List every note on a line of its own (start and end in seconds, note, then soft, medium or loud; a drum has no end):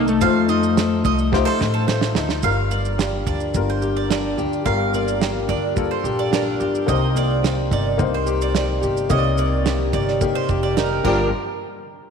0.00 0.20 C2 medium
0.00 0.20 F3 medium
0.00 0.21 A3 medium
0.00 0.22 D#4 medium
0.00 0.47 D#4 medium
0.00 0.22 F4 medium
0.00 0.76 A4 medium
0.00 0.23 C5 medium
0.08 1.88 A3 medium
0.08 shaker medium
0.21 1.01 F2 loud
0.21 2.46 F3 medium
0.21 1.03 A3 medium
0.21 1.03 D#4 medium
0.21 1.04 F4 medium
0.21 1.04 C5 medium
0.21 0.48 F5 loud
0.21 kick loud
0.21 shaker medium
0.49 1.03 D#4 medium
0.49 0.88 D#5 medium
0.49 shaker medium
0.63 shaker medium
0.77 1.32 A4 medium
0.77 snare loud
0.77 shaker medium
1.04 1.43 C2 medium
1.04 1.58 D#4 medium
1.04 1.18 D#5 medium
1.04 kick medium
1.04 shaker soft
1.18 shaker medium
1.32 2.14 A3 medium
1.32 2.15 D#4 medium
1.32 2.15 F4 medium
1.32 1.45 G4 medium
1.32 2.15 C5 medium
1.32 kick loud
1.32 snare medium
1.45 1.86 A4 medium
1.45 1.59 C5 medium
1.59 2.12 A1 loud
1.59 2.14 D#4 medium
1.59 snare medium
1.74 1.87 A4 medium
1.87 2.48 A4 medium
1.87 2.27 C5 medium
1.87 snare medium
2.01 snare medium
2.15 2.41 D2 medium
2.15 2.49 D#4 medium
2.15 snare loud
2.29 snare medium
2.43 3.23 G1 medium
2.43 4.63 G2 medium
2.43 3.25 G3 medium
2.43 3.26 F4 medium
2.43 3.26 A#4 medium
2.43 2.70 F5 medium
2.43 kick loud
2.43 shaker medium
2.71 3.54 A#3 medium
2.71 3.10 D5 medium
2.71 shaker medium
2.85 shaker soft
2.98 3.81 G4 medium
2.98 snare loud
2.98 shaker medium
3.27 3.52 D2 medium
3.27 4.09 D4 medium
3.27 3.40 D5 medium
3.27 kick medium
3.27 shaker soft
3.40 shaker soft
3.54 4.34 G1 loud
3.54 4.36 G3 medium
3.54 4.93 A#3 medium
3.54 4.37 F4 medium
3.54 4.38 A#4 medium
3.54 kick medium
3.54 shaker medium
3.70 3.82 C5 medium
3.82 4.37 G4 medium
3.82 shaker soft
3.97 4.10 D5 medium
4.10 5.46 D4 medium
4.10 4.50 D5 medium
4.10 snare loud
4.10 shaker medium
4.38 4.63 D2 medium
4.38 5.20 G4 medium
4.38 shaker soft
4.53 shaker soft
4.64 5.45 G1 loud
4.64 6.87 G2 medium
4.64 5.47 G3 medium
4.64 5.47 F4 medium
4.64 5.48 A#4 medium
4.64 4.92 F5 medium
4.64 kick loud
4.64 shaker medium
4.94 5.76 A#3 medium
4.94 5.33 D5 medium
4.94 shaker medium
5.08 shaker medium
5.21 6.04 G4 medium
5.21 snare loud
5.21 shaker medium
5.48 5.87 D2 medium
5.48 6.30 D4 medium
5.48 5.62 D5 medium
5.48 kick medium
5.48 shaker soft
5.75 6.58 G3 medium
5.75 7.14 A#3 medium
5.75 6.59 F4 medium
5.75 6.59 A4 medium
5.75 kick loud
5.75 shaker medium
5.91 6.04 C5 medium
6.04 6.56 A#1 medium
6.04 6.59 G4 medium
6.04 shaker soft
6.19 6.32 D5 medium
6.31 6.93 D4 medium
6.31 6.72 A#4 medium
6.31 snare loud
6.31 shaker medium
6.60 6.86 G1 medium
6.60 7.42 G4 medium
6.60 shaker soft
6.75 shaker soft
6.86 7.68 C2 medium
6.86 9.08 C3 medium
6.86 7.69 A#3 medium
6.86 7.70 D#4 medium
6.86 7.70 C5 medium
6.86 7.15 D#5 medium
6.86 kick loud
6.86 shaker medium
7.15 7.97 A#3 medium
7.15 7.55 D5 medium
7.15 shaker medium
7.43 8.26 G4 medium
7.43 snare loud
7.43 shaker medium
7.71 7.97 G1 medium
7.71 8.53 D#4 medium
7.71 7.85 D5 medium
7.71 kick medium
7.71 shaker soft
7.97 8.79 C2 loud
7.97 8.80 A#3 medium
7.97 9.37 A#3 medium
7.97 8.81 D#4 medium
7.97 8.81 C5 medium
7.97 kick loud
7.97 shaker medium
8.14 8.27 C5 medium
8.26 8.81 G4 medium
8.26 shaker medium
8.41 8.54 D5 medium
8.41 shaker medium
8.54 9.91 D#4 medium
8.54 8.94 D5 medium
8.54 snare loud
8.54 shaker medium
8.82 9.08 G1 medium
8.82 9.65 G4 medium
8.82 shaker medium
8.97 shaker soft
9.09 9.89 C2 loud
9.09 11.04 C3 medium
9.09 9.92 A#3 medium
9.09 9.92 D#4 medium
9.09 9.17 C#5 medium
9.09 9.37 D#5 medium
9.09 kick loud
9.09 shaker medium
9.18 9.96 D5 medium
9.38 10.21 A#3 medium
9.38 9.78 D5 medium
9.38 shaker medium
9.65 10.49 G4 medium
9.65 snare loud
9.65 shaker medium
9.92 10.32 G1 medium
9.92 10.75 D#4 medium
9.92 10.07 D5 medium
9.92 kick medium
9.92 shaker soft
10.08 snare soft
10.21 11.03 A#3 medium
10.21 11.05 A#3 medium
10.21 11.04 D#4 medium
10.21 11.04 G4 medium
10.21 kick loud
10.21 shaker medium
10.35 10.48 C5 medium
10.49 11.01 F1 medium
10.49 11.06 G4 medium
10.49 kick medium
10.49 shaker medium
10.63 10.76 D5 medium
10.76 11.04 D#4 medium
10.76 11.03 A#4 medium
10.76 snare loud
10.76 shaker medium
11.04 11.31 G1 medium
11.04 11.26 G2 medium
11.04 11.27 D3 medium
11.04 11.27 F3 medium
11.04 11.31 G3 medium
11.04 11.27 A#3 loud
11.04 11.28 D4 medium
11.04 11.30 F4 medium
11.04 11.28 G4 medium
11.04 11.30 A#4 loud
11.04 11.31 A#4 medium
11.04 kick loud
11.04 crash medium